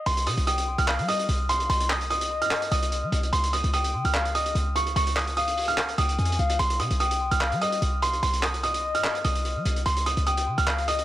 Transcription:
0.06 C2 C6, closed hi-hat
0.17 closed hi-hat
0.27 C3 D#6, closed hi-hat
0.37 C2, closed hi-hat
0.47 G5 D#6, closed hi-hat
0.58 closed hi-hat
0.78 C2 F6, closed hi-hat
0.88 F5, clap, closed hi-hat
0.99 G3, closed hi-hat
1.08 D#5 D#6, closed hi-hat
1.19 closed hi-hat
1.29 C2, closed hi-hat
1.49 C6, closed hi-hat
1.60 closed hi-hat
1.69 C2 C6, closed hi-hat
1.80 closed hi-hat
1.90 D#6, clap, closed hi-hat
2.01 closed hi-hat
2.10 D#5 D#6, closed hi-hat
2.21 closed hi-hat
2.42 G2 F6, closed hi-hat
2.51 clap, closed hi-hat
2.62 closed hi-hat
2.71 C2 D#6, closed hi-hat
2.82 closed hi-hat
2.92 closed hi-hat
3.03 G3
3.12 C2, closed hi-hat
3.23 closed hi-hat
3.33 C#2 C6, closed hi-hat
3.44 closed hi-hat
3.53 D#6, closed hi-hat
3.64 C#2, closed hi-hat
3.73 G5 D#6, closed hi-hat
3.84 closed hi-hat
3.94 C#3
4.05 C#2 F6, closed hi-hat
4.14 F5, clap, closed hi-hat
4.25 closed hi-hat
4.35 D#5 D#6, closed hi-hat
4.46 closed hi-hat
4.55 C#2, closed hi-hat
4.76 C#6, closed hi-hat
4.87 closed hi-hat
4.96 C#2 C#6, closed hi-hat
5.07 closed hi-hat
5.16 D#6, clap, closed hi-hat
5.27 closed hi-hat
5.36 F5 D#6, closed hi-hat
5.48 closed hi-hat
5.57 open hi-hat
5.68 F6, closed hi-hat
5.78 clap, closed hi-hat
5.88 closed hi-hat
5.98 C#2 G5 D#6, closed hi-hat
6.09 closed hi-hat
6.18 F2 G#5, closed hi-hat
6.25 closed hi-hat
6.32 closed hi-hat
6.39 C#2 F5, closed hi-hat
6.50 closed hi-hat
6.59 C2 C6, closed hi-hat
6.70 closed hi-hat
6.80 C3 D#6, closed hi-hat
6.91 C2, closed hi-hat
7.00 G5 D#6, closed hi-hat
7.11 closed hi-hat
7.31 C2 F6, closed hi-hat
7.41 F5, clap, closed hi-hat
7.52 G3, closed hi-hat
7.61 D#5 D#6, closed hi-hat
7.72 closed hi-hat
7.82 C2, closed hi-hat
8.02 C6, closed hi-hat
8.13 closed hi-hat
8.23 C2 C6, closed hi-hat
8.33 closed hi-hat
8.43 D#6, clap, closed hi-hat
8.54 closed hi-hat
8.63 D#5 D#6, closed hi-hat
8.74 closed hi-hat
8.95 G2 F6, closed hi-hat
9.04 clap, closed hi-hat
9.15 closed hi-hat
9.24 C2 D#6, closed hi-hat
9.35 closed hi-hat
9.45 closed hi-hat
9.56 G3
9.65 C2, closed hi-hat
9.76 closed hi-hat
9.86 C#2 C6, closed hi-hat
9.97 closed hi-hat
10.06 D#6, closed hi-hat
10.17 C#2, closed hi-hat
10.26 G5 D#6, closed hi-hat
10.37 closed hi-hat
10.47 C#3
10.58 C#2 F6, closed hi-hat
10.67 F5, clap, closed hi-hat
10.78 closed hi-hat
10.88 D#5 D#6, closed hi-hat
10.99 closed hi-hat

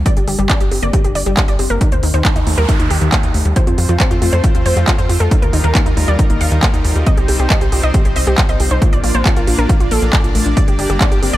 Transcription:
0.06 G3 D5, kick, closed hi-hat
0.17 G1 D4 G4, closed hi-hat
0.28 G1 G3 G4, open hi-hat
0.39 G1 G3 G4, closed hi-hat
0.50 D4 D5, kick, clap, closed hi-hat
0.60 G1 G4, closed hi-hat
0.71 G1 C4 G4, open hi-hat
0.82 G1 A#3 D5, closed hi-hat
0.93 G3 G4, kick, closed hi-hat
1.04 F1 D4 G4, closed hi-hat
1.15 G1 G3 D5, open hi-hat
1.26 G1 G3 G4, closed hi-hat
1.37 D4 G4, kick, clap, closed hi-hat
1.48 G1 G4 D5, closed hi-hat
1.59 G1 C4 G4, open hi-hat
1.70 G1 A#3 A#4, closed hi-hat
1.81 D#3 D#4, kick, closed hi-hat, noise sweep
1.92 D#2 A#3 C5, closed hi-hat
2.03 D#2 D#3 D#4, open hi-hat
2.14 D#2 D#3 C5, closed hi-hat
2.25 D#4, kick, clap, closed hi-hat
2.36 D#2 D#4, closed hi-hat
2.47 D#2 A3 D#4, open hi-hat
2.58 D#2 G3 A#4, closed hi-hat
2.69 D#3 D#4, kick, closed hi-hat
2.79 D#2 A#3 D#4, closed hi-hat
2.90 D#2 D#3 G4, open hi-hat
3.01 D#2 D#3, closed hi-hat
3.12 A#3, kick, clap, closed hi-hat
3.23 D#2 D#4, closed hi-hat
3.34 D#2 A3, open hi-hat
3.45 D#2 G3, closed hi-hat
3.56 F3 A3 C4 F4 C5, kick, closed hi-hat
3.67 F2 C4 F4, closed hi-hat
3.78 F2 F3 F4, open hi-hat
3.89 F2 F3 F4, closed hi-hat
4.00 C4 C5, kick, clap, closed hi-hat
4.11 F2 F4, closed hi-hat
4.22 F2 A3 F4, open hi-hat
4.33 F2 A3 C5, closed hi-hat
4.44 F3 F4, kick, closed hi-hat
4.55 D#2 C4 F4, closed hi-hat
4.66 F2 F3 C5, open hi-hat
4.77 F2 F3 F4, closed hi-hat
4.87 C4 F4, kick, clap, closed hi-hat
4.98 F2 F4 C5, closed hi-hat
5.09 F2 A3 F4, open hi-hat
5.20 F2 A3 A4, closed hi-hat
5.31 D#3 G3 D#4 A#4, kick, closed hi-hat
5.42 D#2 A#3 A#4, closed hi-hat
5.53 D#2 D#3 D#4, open hi-hat
5.64 D#2 D#3 A#4
5.75 A#3 D#4, kick, clap, closed hi-hat
5.86 D#2 D#4, closed hi-hat
5.97 D#2 A3 D#4, open hi-hat
6.08 D#2 G3 D5, closed hi-hat
6.19 D#3 D#4, kick, closed hi-hat
6.30 A#1 A#3 D#4, closed hi-hat
6.41 D#2 D#3 F5, open hi-hat
6.52 D#2 D#3, closed hi-hat
6.63 A#3, kick, clap, closed hi-hat
6.74 D#2 D#4, closed hi-hat
6.85 D#2 A3, open hi-hat
6.96 D#2 G3, closed hi-hat
7.06 C4 C5 D#5, kick, closed hi-hat
7.17 C2 G4, closed hi-hat
7.28 C2 C4 G4, open hi-hat
7.39 C2 C4 G4, closed hi-hat
7.50 G4 D#5, kick, clap, closed hi-hat
7.61 C2 G4 C5, closed hi-hat
7.72 C2 F4 G4, open hi-hat
7.83 C2 D#4 D#5, closed hi-hat
7.94 C4 G4, kick, closed hi-hat
8.05 A#1 G4, closed hi-hat
8.16 C2 C4 D#5, open hi-hat
8.27 C2 C4 G4, closed hi-hat
8.38 G4, kick, clap, closed hi-hat
8.49 C2 C5 D#5, closed hi-hat
8.60 C2 F4 G4, open hi-hat
8.71 C2 D#4 C5, closed hi-hat
8.82 A#3 D4 F4 D5, kick, closed hi-hat
8.93 A#1 F4 D5, closed hi-hat
9.04 A#1 A#3 F4, open hi-hat
9.14 A#1 A#3 C5, closed hi-hat
9.25 F4, kick, clap, closed hi-hat
9.36 A#1 F4 A#4, closed hi-hat
9.47 A#1 D4 F4, open hi-hat
9.58 A#1 D4 A#4, closed hi-hat
9.69 A#3 F4, kick, closed hi-hat
9.80 A#1 F4, closed hi-hat
9.91 A#1 A#3 A4, open hi-hat
10.02 A#1 A#3, closed hi-hat
10.13 kick, clap, closed hi-hat
10.24 A#1 F4, closed hi-hat
10.35 A#1 A3, open hi-hat
10.46 A#1 D4, closed hi-hat
10.57 G3 A#3 G4 D5, kick, closed hi-hat
10.68 G1 D4 G4, closed hi-hat
10.79 G1 G3 G4, open hi-hat
10.90 G1 G3 G4, closed hi-hat
11.01 D4 D5, kick, clap, closed hi-hat
11.12 G1 G4, closed hi-hat
11.22 G1 C4 G4, open hi-hat
11.33 G1 A#3 D5, closed hi-hat

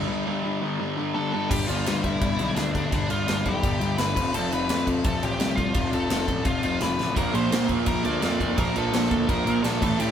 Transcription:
0.07 G2 D3 G3
0.25 G2 D3 G3
0.43 G2 D3 G3
0.61 G2 D3 G3
0.79 G2 D3 G3
0.97 G2 D3 G3
1.15 G2 D3 G3 A4 A5
1.33 G2 D3 G3 A4 A5
1.50 G1 G2 D3 G3 G4 G5, kick, crash
1.67 G1 G2 D3 G3 F4 F5, crash
1.86 G2 D3 G3, snare, crash
2.03 G2 D3 G3 E4 E5, kick, crash
2.21 G1 G2 D3 G3, kick, crash
2.38 B1 G2 D3 G3, crash
2.56 D2 G2 D3 G3 D4 D5, snare, crash
2.73 D2 G2 D3 G3 D4 D5, kick, crash
2.91 G1 G2 D3 G3 D4 D5, kick, crash
3.09 G1 G2 D3 G3 F4 F5, crash
3.28 G1 G2 D3 G3, snare, crash
3.45 B1 G2 D3 G3 G4 G5, kick, crash
3.63 G1 G2 D3 G3, kick, crash
3.80 G1 G2 D3 G3, crash
3.98 G1 G2 D3 G3 B4 B5, snare, crash
4.15 F1 F2 C3 F3, kick, crash
4.34 F1 F2 C3 F3 A4 A5, crash
4.51 F1 F2 C3 F3 B4 B5, crash
4.68 F2 C3 F3, snare, crash
4.86 F2 C3 F3, kick, crash
5.04 F1 F2 C3 F3 A4 A5, kick, crash
5.22 A1 F2 C3 F3 G4 G5, crash
5.39 C2 F2 C3 F3, snare, crash
5.56 C2 F2 C3 F3 F4 F5, kick, crash
5.74 F1 F2 C3 F3, kick, crash
5.91 F1 F2 C3 F3 A4 A5, crash
6.10 F1 F2 C3 F3, snare, crash
6.27 A1 F2 C3 F3, kick, crash
6.45 F1 F2 C3 F3 F4 F5, kick, crash
6.63 F1 F2 C3 F3 F4 F5, crash
6.80 F1 F2 C3 F3 B4 B5, snare, crash
6.98 A1 F2 C3 F3, snare
7.16 A#1 A#2 F3 A#3 A#4 A#5, kick, crash
7.33 A#1 A#2 F3 A#3 C5 C6, crash
7.51 A#2 F3 A#3, snare, crash
7.68 A#2 F3 A#3, kick, crash
7.86 A#1 A#2 F3 A#3 A#4 A#5, kick, crash
8.03 D2 A#2 F3 A#3 D5 D6, crash
8.21 F2 A#2 F3 A#3, snare, crash
8.39 F1 A#2 F3 A#3, kick, crash
8.58 A#1 A#2 F3 A#3 A#4 A#5, kick, crash
8.75 A#1 A#2 F3 A#3 A4 A5, crash
8.92 A#1 A#2 F3 A#3, snare, crash
9.10 D2 A#2 F3 A#3, kick, crash
9.28 A#1 A#2 F3 A#3 A#4 A#5, kick, crash
9.45 A#1 A#2 F3 A#3, crash
9.63 A#1 A#2 F3 A#3 A4 A5, snare, crash
9.81 A1 A2 E3 A3 A4 A5, kick, crash
9.99 A1 A2 E3 A3 G4 G5, crash

